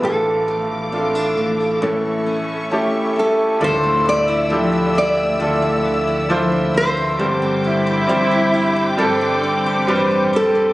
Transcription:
<<
  \new Staff \with { instrumentName = "String section" } { \time 4/4 \key d \minor \tempo 4 = 67 << { <f'' d'''>2 <e'' cis'''>2 | <e'' e'''>1 | <g'' d'''>1 | } \\ { a'1 | d''1 | c''1 | } >> }
  \new Staff \with { instrumentName = "Nylon-string guitar" } { \time 4/4 \key d \minor a'2. r8 a'8 | c''8 d''4 d''4. r8 c''8~ | c''2.~ c''8 a'8 | }
  \new Staff \with { instrumentName = "Cello section" } { \time 4/4 \key d \minor r1 | r1 | r8 e'4. d'8 c'8. r8. | }
  \new Staff \with { instrumentName = "Upright piano" } { \time 4/4 \key d \minor << { r2. a''8 e''8 | r1 | r1 | } \\ { <a d' f' a'>4 <a d' f' a'>4 <a cis' e' a'>4 <a cis' e' g'>4 | <a d' e' f' a'>4 <a d' e' f' g'>4 <a d' e' f' a'>4 <a d' e' f' c''>4 | <g c' d' g' c''>4 <g c' d' g' c''>4 <g c' d' g' a'>4 <g c' d' g' b' c''>4 | } >> }
  \new Staff \with { instrumentName = "Upright piano" } { \clef bass \time 4/4 \key d \minor a,4. r8 <a, e>4. r8 | a,4. r2 r8 | <g, d>4. r2 r8 | }
  \new Staff \with { instrumentName = "Steel-string acoustic guitar" } { \time 4/4 \key d \minor a,8 a8 c'16 d'16 a8 a,8 cis'8 a8 cis'8 | d16 a16 d'16 e'16 f16 d'16 e'16 a16 d16 a16 d'16 e'16 f16 d'16 e'16 a16 | g,16 c'16 d'16 g'16 g16 d'16 g'16 c'16 g,16 c'16 d'16 g'16 g16 d'16 g'16 c'16 | }
  \new Staff \with { instrumentName = "Sub bass" } { \clef bass \time 4/4 \key d \minor a,,8. a,,8. a,,8 r2 | d,2 d,4. d,8 | g,,4 g,,4 g,,4 a,,8 d,,8 | }
>>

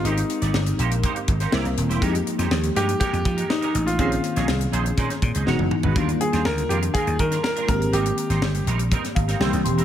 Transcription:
<<
  \new Staff \with { instrumentName = "Grand piano" } { \time 4/4 \key aes \lydian \tempo 4 = 122 ees'4. r2 r8 | r4. g'8 g'4 ees'8. f'16 | f'4 r2. | r8 aes'8 bes'8 g'8 aes'8 bes'8 bes'8 bes'8 |
g'4. r2 r8 | }
  \new Staff \with { instrumentName = "Clean electric guitar" } { \time 4/4 \key aes \lydian <bes ees' g' c''>16 r8 <bes ees' g' d''>16 r8 <bes ees' g' c''>16 r16 <bes ees' g' c''>16 r8 <bes ees' g' c''>16 <bes e' g' d''>16 r8 <bes e' g' c''>16 | <aes ees' g' bes'>16 r8 <aes ees' g' c''>16 r8 <aes ees' g' bes'>16 r16 <aes ees' g' bes'>16 r8 <aes ees' g' bes'>16 r16 <aes ees' g' bes'>16 r8 | <des' ees' aes' c''>16 r8 <des' ees' aes' des''>16 r8 <des' ees' aes' c''>16 r16 <des' ees' aes' c''>16 r8 <des' ees' aes' c''>16 <gis dis' fis' des''>16 r8 <gis dis' fis' b'>16 | <g d' f' bes'>16 r8 <g d' f' c''>16 r8 <g d' f' bes'>16 r16 <g d' f' bes'>16 r8 <g d' f' bes'>16 r16 <g d' f' bes'>16 r8 |
<g c' ees' bes'>16 r8 <g c' ees' c''>16 r8 <g c' ees' bes'>16 r16 <g c' ees' bes'>16 r8 <g c' ees' bes'>16 <g c' e' c''>16 r8 <g c' e' bes'>16 | }
  \new Staff \with { instrumentName = "FM electric piano" } { \time 4/4 \key aes \lydian r1 | r1 | r1 | r1 |
r2 r8 f''8 g''8 c'''8 | }
  \new Staff \with { instrumentName = "FM electric piano" } { \time 4/4 \key aes \lydian <aes c' ees' g' bes'>2. <g bes c' e' bes'>4 | <f aes bes ees' g'>1 | <ees bes c' des' aes'>2. <e gis b dis' fis'>4 | <ees g bes d' f'>2.~ <ees g bes d' f'>8 <ees aes bes c' g'>8~ |
<ees aes bes c' g'>2. <d e g bes c' g'>4 | }
  \new Staff \with { instrumentName = "Slap bass" } { \clef bass \time 4/4 \key aes \lydian aes,,8 r16 aes,,16 g,,8 bes,,8. r16 aes,,8 c,16 c,16 ees,,16 e,,16 | f,8 r16 f,16 ees,8 g,8 r16 f,16 f8 r8 a,,8 | bes,,8 r16 bes,,16 c,8 bes,,8 bes,16 r16 bes,16 des,16 e,,16 fis,,16 r16 gis,,16 | ees,8 r16 ees,16 d,8 f,8 r16 ees,16 ees8 r8 aes,,8 |
aes,,8 r16 aes,,16 g,,8 bes,,8. r16 aes,,8 c,16 c,16 ees,,16 e,,16 | }
  \new DrumStaff \with { instrumentName = "Drums" } \drummode { \time 4/4 hh16 hh16 hh16 <hh sn>16 sn16 hh16 hh16 hh16 <hh bd>16 hh16 <hh bd>16 <hh sn>16 sn16 hh16 hh16 <hh sn>16 | <hh bd>16 hh16 hh16 <hh sn>16 sn16 hh16 hh16 hh16 <hh bd>16 hh16 <hh bd>16 hh16 sn16 hh16 hh16 <hh sn>16 | <hh bd>16 hh16 hh16 <hh sn>16 sn16 hh16 hh16 hh16 <hh bd>16 <hh sn>16 <hh bd>16 hh16 sn16 tommh16 toml16 tomfh16 | <hh bd>16 hh16 hh16 <hh sn>16 sn16 hh16 hh16 hh16 <hh bd>16 hh16 <hh bd>16 <hh sn>16 sn16 hh16 <hh bd>16 hh16 |
hh16 hh16 hh16 <hh sn>16 sn16 hh16 hh16 hh16 <hh bd>16 <hh sn>16 <hh bd>16 <hh sn>16 sn16 hh16 hh16 hh16 | }
>>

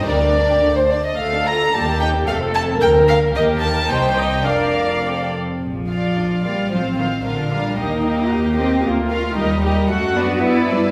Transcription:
<<
  \new Staff \with { instrumentName = "Violin section" } { \time 2/4 \key d \phrygian \tempo 4 = 111 d''4~ d''16 c''16 d''16 ees''16 | \key bes \major f''8 bes''8 a''8 g''8 | f''8 a''8 g''8 f''8 | ees''8 a''8 g''4 |
f''4. r8 | r8 f''4 f''8 | f''8 f''8 f''8 f''8 | ees''8 ees''4 ees''8 |
r8 f''8 ees''8 ees''8 | \key d \mixolydian fis''8 d''8 b'8 d''8 | }
  \new Staff \with { instrumentName = "Viola section" } { \time 2/4 \key d \phrygian d'4. r8 | \key bes \major a'4 g'4 | a'4 bes'4 | bes'4 c''8 ees''8 |
d''4. r8 | r4 d'8 bes8 | c'4 d'4 | ees'4 g'4 |
f'4 ees'8 g'8 | \key d \mixolydian fis'4 e'4 | }
  \new Staff \with { instrumentName = "Violin section" } { \time 2/4 \key d \phrygian << { bes'4 a8 d'8 | \key bes \major r4 g'4 | a'4 bes'4 | g'4 g'4 |
bes'4 a'8 r8 | r8 d''4 d''8 | c''8 c''8 bes'8 bes'8 | bes'8 bes'4 bes'8 |
r8 bes'8 bes'8 bes'8 | \key d \mixolydian a'8 fis'8 d''8 b'8 | } \\ { g16 bes16 d'16 g'16 r4 | a16 d'16 f'16 d'16 g16 bes16 ees'16 bes16 | a16 c'16 a16 c'16 bes16 bes16 bes16 bes16 | bes4 ees'4 |
d'4 c'8. r16 | r8 f'4 f'8 | f'8 f'8 f'8 f'8 | g'8 g'4 g'8 |
r8 f'8 g'8 g'8 | fis'8 d'8 b8 d'8 | } >> }
  \new Staff \with { instrumentName = "Cello section" } { \clef bass \time 2/4 \key d \phrygian d,4 d,4 | \key bes \major d,4 ees,4 | f,4 d,4 | ees,4 c,4 |
f,4. r8 | f4. g8 | f8 ees8 d8 g8 | bes4. c'8 |
bes8 a8 g4 | \key d \mixolydian a8 b4 g8 | }
  \new Staff \with { instrumentName = "Double bass section" } { \clef bass \time 2/4 \key d \phrygian d,4 d,4 | \key bes \major d,4 ees,4 | f,,4 d,4 | ees,4 c,4 |
f,,4. r8 | bes,,4 bes,,4 | a,,4 bes,,4 | ees,4 ees,4 |
d,4 ees,4 | \key d \mixolydian fis,4 g,4 | }
>>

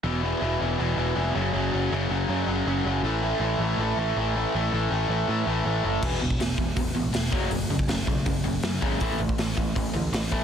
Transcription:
<<
  \new Staff \with { instrumentName = "Overdriven electric guitar" } { \clef bass \time 4/4 \key a \major \tempo 4 = 161 <e, b, e>8 <e, b, e>8 <e, b, e>8 <e, b, e>8 <e, b, e>8 <e, b, e>8 <e, b, e>8 <fis, cis fis>8 | <fis, cis fis>8 <fis, cis fis>8 <fis, cis fis>8 <fis, cis fis>8 <fis, cis fis>8 <fis, cis fis>8 <fis, cis fis>8 <fis, cis fis>8 | <a, e a>8 <a, e a>8 <a, e a>8 <a, e a>8 <a, e a>8 <a, e a>8 <a, e a>8 <a, e a>8 | <a, e a>8 <a, e a>8 <a, e a>8 <a, e a>8 <a, e a>8 <a, e a>8 <a, e a>8 <a, e a>8 |
<e, b, e>8 <e, b,>8 <e, b,>8 <e, b,>8 <e, b,>8 <e, b,>8 <e, b,>8 <fis, cis fis>8 | <fis, cis>8 <fis, cis>8 <fis, cis>8 <fis, cis>8 <fis, cis>8 <fis, cis>8 <fis, cis>8 <fis, cis fis>8 | <a, e a>8 <a, e>8 <a, e>8 <a, e>8 <a, e>8 <a, e>8 <a, e>8 <a, e a>8 | }
  \new Staff \with { instrumentName = "Picked electric bass" } { \clef bass \time 4/4 \key a \major e,,4 e,,8 e,,8 e,,8 e,,8 f,,8 fis,,8 | fis,,8 fis,,8 fis,,8 fis,,8 fis,8 fis,,8 fis,,8 fis,,8 | a,,4 a,,8 a,,8 a,,8 a,,8 a,,4 | a,,8 a,,8 a,,8 a,,8 a,8 a,,8 a,,8 fis,,8 |
e,,8 e,,8 e,,8 e,,8 e,,8 a,,8 e,,8 fis,,8 | fis,,8 fis,,8 fis,,8 b,,8 fis,,8 fis,,8 fis,8 gis,,8 | a,,8 a,,8 a,,8 a,,8 a,,8 d,8 a,,8 a,,8 | }
  \new DrumStaff \with { instrumentName = "Drums" } \drummode { \time 4/4 r4 r4 r4 r4 | r4 r4 r4 r4 | r4 r4 r4 r4 | r4 r4 r4 r4 |
<cymc bd>8. bd16 <hho sn>8 bd8 <hho bd>4 <hho sn>8 bd8 | hho8. bd16 <hho sn>8 bd8 <hho bd>4 <hho sn>8 bd8 | <hho bd>8. bd16 <hho sn>8 bd8 <hho bd>4 <hho sn>8 bd8 | }
>>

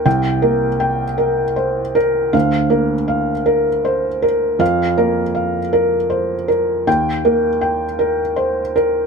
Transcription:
<<
  \new Staff \with { instrumentName = "Felt piano" } { \time 6/8 \key bes \major \tempo 4. = 53 << { g''4 r2 | f''4 r2 | f''4 r2 | g''4 r2 | } \\ { r8 bes'8 g''8 bes'8 c''8 bes'8 | r8 bes'8 f''8 bes'8 c''8 bes'8 | r8 bes'8 f''8 bes'8 c''8 bes'8 | r8 bes'8 g''8 bes'8 c''8 bes'8 | } >> }
  \new Staff \with { instrumentName = "Felt piano" } { \clef bass \time 6/8 \key bes \major c,8 bes4 r4. | d,8 bes4 r4. | f,8 bes4 r4. | ees,8 bes4 r4. | }
>>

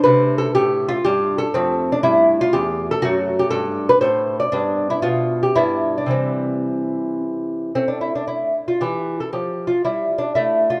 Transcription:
<<
  \new Staff \with { instrumentName = "Lute" } { \time 3/4 \key a \minor \tempo 4 = 119 \tuplet 3/2 { b'4 a'8 g'4 f'8 g'4 a'8 } | \key c \major c'8. d'16 e'8. f'16 g'8. a'16 | fis'8. g'16 a'8. b'16 c''8. d''16 | d'8. e'16 f'8. g'16 e'8. d'16 |
c'2 r4 | \key a \minor c'16 d'16 e'16 d'16 e'8. f'16 g'8. a'16 | \tuplet 3/2 { g'4 f'8 e'4 d'8 e'4 f'8 } | }
  \new Staff \with { instrumentName = "Lute" } { \clef bass \time 3/4 \key a \minor << { a2. | \key c \major a2. | a2. | b2 b4 |
r2. | \key a \minor r2. | r2. | } \\ { c4 a,4 g,4 | f,4 g,4 e,4 | fis,4 g,4 a,4 | g,4 b,4 g,4 |
<c e g>2. | a2 e4 | f4 g4 a4 | } >> }
>>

